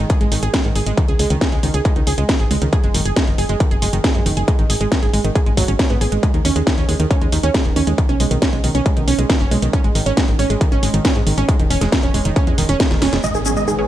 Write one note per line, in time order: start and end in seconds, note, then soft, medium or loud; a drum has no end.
0.10 0.17 G#4 medium
0.10 kick loud
0.10 closed hi-hat medium
0.21 0.28 G#1 medium
0.21 0.28 G#3 medium
0.21 closed hi-hat soft
0.32 0.38 G#1 loud
0.32 0.39 D#3 medium
0.32 open hi-hat loud
0.43 0.49 G#1 medium
0.43 0.50 G#4 medium
0.43 closed hi-hat medium
0.54 0.61 G#3 medium
0.54 kick loud
0.54 snare loud
0.54 closed hi-hat medium
0.65 0.71 G#2 medium
0.65 0.71 D#3 medium
0.65 closed hi-hat soft
0.76 0.82 G#1 loud
0.76 0.82 G#4 medium
0.76 open hi-hat medium
0.86 0.93 G#1 medium
0.86 0.93 G#3 medium
0.86 closed hi-hat medium
0.97 1.04 D#3 medium
0.97 kick loud
0.97 closed hi-hat medium
1.08 1.15 C#2 medium
1.08 1.15 G#4 medium
1.08 closed hi-hat soft
1.19 1.26 C#2 medium
1.19 1.26 G#3 medium
1.19 open hi-hat loud
1.30 1.37 C#2 medium
1.30 1.37 D#3 medium
1.30 closed hi-hat medium
1.41 1.48 G#4 medium
1.41 kick loud
1.41 snare loud
1.41 closed hi-hat medium
1.52 1.59 C#2 medium
1.52 1.59 G#3 medium
1.52 closed hi-hat soft
1.63 1.70 C#2 loud
1.63 1.70 D#3 medium
1.63 open hi-hat medium
1.74 1.81 C#2 medium
1.74 1.81 G#4 medium
1.74 closed hi-hat medium
1.85 1.92 G#3 medium
1.85 kick loud
1.85 closed hi-hat medium
1.96 2.03 C#2 medium
1.96 2.03 D#3 medium
1.96 closed hi-hat soft
2.07 2.14 C#2 medium
2.07 2.14 G#4 medium
2.07 open hi-hat loud
2.18 2.25 C#2 medium
2.18 2.25 G#3 medium
2.18 closed hi-hat medium
2.29 2.36 D#3 medium
2.29 kick loud
2.29 snare loud
2.29 closed hi-hat medium
2.40 2.46 G#1 medium
2.40 2.47 G#4 medium
2.40 closed hi-hat soft
2.51 2.57 C#2 loud
2.51 2.58 G#3 medium
2.51 open hi-hat loud
2.62 2.68 C#2 medium
2.62 2.69 D#3 medium
2.62 closed hi-hat soft
2.73 2.80 G#4 medium
2.73 kick loud
2.73 closed hi-hat medium
2.84 2.90 F#1 medium
2.84 2.90 G#3 medium
2.84 closed hi-hat soft
2.94 3.01 F#1 loud
2.94 3.01 D#3 medium
2.94 open hi-hat loud
3.05 3.12 F#1 medium
3.05 3.12 G#4 medium
3.05 closed hi-hat medium
3.16 3.23 G#3 medium
3.16 kick loud
3.16 snare loud
3.16 closed hi-hat soft
3.27 3.34 F#1 medium
3.27 3.34 D#3 medium
3.27 closed hi-hat soft
3.38 3.45 F#1 loud
3.38 3.45 G#4 medium
3.38 open hi-hat medium
3.49 3.56 F#1 medium
3.49 3.56 G#3 medium
3.49 closed hi-hat soft
3.60 3.67 D#3 medium
3.60 kick loud
3.60 closed hi-hat medium
3.71 3.78 F#1 medium
3.71 3.78 G#4 medium
3.71 closed hi-hat soft
3.82 3.89 F#1 loud
3.82 3.89 G#3 medium
3.82 open hi-hat loud
3.93 4.00 F#1 loud
3.93 4.00 D#3 medium
3.93 closed hi-hat medium
4.04 4.11 G#4 medium
4.04 kick loud
4.04 snare loud
4.04 closed hi-hat soft
4.15 4.22 F#2 medium
4.15 4.22 G#3 medium
4.15 closed hi-hat soft
4.26 4.33 F#1 loud
4.26 4.33 D#3 medium
4.26 open hi-hat loud
4.37 4.44 F#1 medium
4.37 4.44 G#4 medium
4.37 closed hi-hat medium
4.48 4.55 G#3 medium
4.48 kick loud
4.48 closed hi-hat medium
4.59 4.65 G#1 medium
4.59 4.66 D#3 medium
4.59 closed hi-hat soft
4.70 4.76 G#1 loud
4.70 4.77 G#4 medium
4.70 open hi-hat loud
4.81 4.87 G#1 medium
4.81 4.88 G#3 medium
4.81 closed hi-hat medium
4.92 4.98 D#3 medium
4.92 kick loud
4.92 snare loud
4.92 closed hi-hat medium
5.03 5.09 G#1 medium
5.03 5.09 G#4 medium
5.03 closed hi-hat soft
5.13 5.20 G#1 medium
5.13 5.20 G#3 medium
5.13 open hi-hat medium
5.24 5.31 G#1 medium
5.24 5.31 D#3 medium
5.24 closed hi-hat medium
5.35 5.42 G#4 medium
5.35 kick loud
5.35 closed hi-hat soft
5.46 5.53 G#1 medium
5.46 5.53 G#3 medium
5.46 closed hi-hat soft
5.57 5.64 G#1 medium
5.57 5.68 F#3 loud
5.57 kick medium
5.57 open hi-hat loud
5.68 5.75 G#1 loud
5.68 5.78 C#4 medium
5.68 closed hi-hat medium
5.79 5.86 C#4 medium
5.79 kick loud
5.79 snare loud
5.79 closed hi-hat soft
5.90 5.97 G#2 medium
5.90 5.94 B3 loud
5.90 closed hi-hat soft
6.01 6.08 G#1 loud
6.01 6.08 G#4 medium
6.01 open hi-hat loud
6.12 6.19 G#1 medium
6.12 6.19 G#3 medium
6.12 closed hi-hat soft
6.23 6.30 G#3 medium
6.23 kick loud
6.23 closed hi-hat medium
6.34 6.41 D#2 medium
6.34 6.41 D#3 medium
6.34 closed hi-hat soft
6.45 6.52 D#2 loud
6.45 6.52 C#4 loud
6.45 open hi-hat loud
6.56 6.63 D#2 medium
6.56 6.63 G#3 medium
6.56 closed hi-hat medium
6.67 6.74 D#3 medium
6.67 kick loud
6.67 snare loud
6.67 closed hi-hat medium
6.78 6.84 D#2 medium
6.78 6.85 C#4 medium
6.78 closed hi-hat soft
6.89 6.95 D#2 loud
6.89 6.96 G#3 medium
6.89 open hi-hat medium
7.00 7.06 D#2 medium
7.00 7.07 D#3 medium
7.00 closed hi-hat soft
7.11 7.17 C#4 loud
7.11 kick loud
7.11 closed hi-hat medium
7.21 7.28 D#2 medium
7.21 7.28 G#3 medium
7.21 closed hi-hat soft
7.32 7.39 D#2 medium
7.32 7.39 D#3 medium
7.32 open hi-hat loud
7.43 7.50 D#2 medium
7.43 7.50 C#4 loud
7.43 closed hi-hat medium
7.54 7.61 G#3 medium
7.54 kick loud
7.54 snare loud
7.54 closed hi-hat soft
7.65 7.72 D#1 medium
7.65 7.72 D#3 medium
7.65 closed hi-hat soft
7.76 7.83 D#2 loud
7.76 7.83 C#4 loud
7.76 open hi-hat medium
7.87 7.94 D#2 medium
7.87 7.94 G#3 medium
7.87 closed hi-hat soft
7.98 8.05 D#3 medium
7.98 kick loud
7.98 closed hi-hat medium
8.09 8.16 B1 medium
8.09 8.16 C#4 loud
8.09 closed hi-hat soft
8.20 8.27 B1 loud
8.20 8.27 G#3 medium
8.20 open hi-hat loud
8.31 8.38 B1 medium
8.31 8.38 D#3 medium
8.31 closed hi-hat medium
8.42 8.49 C#4 loud
8.42 kick loud
8.42 snare loud
8.42 closed hi-hat medium
8.53 8.60 B1 medium
8.53 8.60 G#3 medium
8.53 closed hi-hat soft
8.64 8.71 B1 loud
8.64 8.71 D#3 medium
8.64 open hi-hat medium
8.75 8.81 B1 medium
8.75 8.82 C#4 loud
8.75 closed hi-hat medium
8.86 8.93 G#3 medium
8.86 kick loud
8.86 closed hi-hat medium
8.97 9.03 B1 medium
8.97 9.04 D#3 medium
8.97 closed hi-hat soft
9.08 9.14 B1 medium
9.08 9.15 C#4 loud
9.08 open hi-hat loud
9.19 9.25 B1 medium
9.19 9.25 G#3 medium
9.19 closed hi-hat medium
9.30 9.36 D#3 medium
9.30 kick loud
9.30 snare loud
9.30 closed hi-hat medium
9.40 9.47 F#1 medium
9.40 9.47 C#4 loud
9.40 closed hi-hat soft
9.51 9.58 B1 loud
9.51 9.58 G#3 medium
9.51 open hi-hat medium
9.62 9.69 B1 medium
9.62 9.69 D#3 medium
9.62 closed hi-hat medium
9.73 9.80 C#4 loud
9.73 kick loud
9.73 closed hi-hat medium
9.84 9.91 G#1 medium
9.84 9.91 G#3 medium
9.84 closed hi-hat soft
9.95 10.02 G#1 medium
9.95 10.02 D#3 medium
9.95 open hi-hat loud
10.06 10.13 G#1 medium
10.06 10.13 C#4 loud
10.06 closed hi-hat medium
10.17 10.24 G#3 medium
10.17 kick loud
10.17 snare loud
10.17 closed hi-hat medium
10.28 10.35 G#1 medium
10.28 10.35 D#3 medium
10.28 closed hi-hat soft
10.39 10.46 G#1 loud
10.39 10.46 C#4 loud
10.39 open hi-hat medium
10.50 10.57 G#1 medium
10.50 10.57 G#3 medium
10.50 closed hi-hat medium
10.61 10.68 D#3 medium
10.61 kick loud
10.61 closed hi-hat medium
10.72 10.79 G#1 medium
10.72 10.79 C#4 loud
10.72 closed hi-hat soft
10.83 10.90 G#1 loud
10.83 10.90 G#3 medium
10.83 open hi-hat loud
10.94 11.00 G#1 medium
10.94 11.01 D#3 medium
10.94 closed hi-hat medium
11.05 11.12 C#4 loud
11.05 kick loud
11.05 snare loud
11.05 closed hi-hat medium
11.16 11.22 G#2 medium
11.16 11.23 G#3 medium
11.16 closed hi-hat soft
11.27 11.33 G#1 loud
11.27 11.34 D#3 medium
11.27 open hi-hat medium
11.38 11.44 G#1 loud
11.38 11.44 C#4 loud
11.38 closed hi-hat medium
11.49 11.55 G#3 medium
11.49 kick loud
11.49 closed hi-hat medium
11.60 11.66 E1 medium
11.60 11.66 D#3 medium
11.60 closed hi-hat soft
11.70 11.77 E1 loud
11.70 11.77 C#4 loud
11.70 open hi-hat loud
11.81 11.88 E1 medium
11.81 11.88 G#3 medium
11.81 snare soft
11.81 closed hi-hat medium
11.92 11.99 D#3 medium
11.92 kick loud
11.92 snare loud
11.92 closed hi-hat medium
12.03 12.10 E1 medium
12.03 12.10 C#4 loud
12.03 closed hi-hat soft
12.14 12.21 E1 loud
12.14 12.21 G#3 medium
12.14 open hi-hat medium
12.25 12.32 E1 medium
12.25 12.32 D#3 medium
12.25 closed hi-hat medium
12.36 12.43 C#4 loud
12.36 kick loud
12.36 closed hi-hat medium
12.47 12.54 E2 medium
12.47 12.54 G#3 medium
12.47 closed hi-hat soft
12.58 12.65 E1 loud
12.58 12.65 D#3 medium
12.58 open hi-hat loud
12.69 12.76 E1 loud
12.69 12.76 C#4 loud
12.69 closed hi-hat medium
12.80 12.87 G#3 medium
12.80 kick loud
12.80 snare loud
12.80 closed hi-hat medium
12.91 12.98 E1 medium
12.91 12.98 D#3 medium
12.91 snare medium
12.91 closed hi-hat soft
13.02 13.08 E1 loud
13.02 13.09 C#4 loud
13.02 snare medium
13.02 open hi-hat medium
13.13 13.19 E1 medium
13.13 13.20 G#3 medium
13.13 snare medium
13.13 closed hi-hat medium
13.23 13.88 G#1 medium
13.23 13.88 D#3 medium
13.23 13.88 G#3 medium
13.23 13.31 G#3 medium
13.23 13.88 B3 medium
13.23 13.32 D#5 loud
13.23 impact medium
13.23 shaker soft
13.35 13.42 D#3 medium
13.35 13.43 G#4 medium
13.35 shaker soft
13.45 13.53 C#4 loud
13.45 13.54 G#4 medium
13.45 shaker medium
13.56 13.63 G#3 medium
13.56 13.65 D#5 medium
13.56 shaker soft
13.68 13.74 D#3 medium
13.68 13.76 G#4 medium
13.68 shaker soft
13.79 13.85 C#4 loud
13.79 13.87 G#4 medium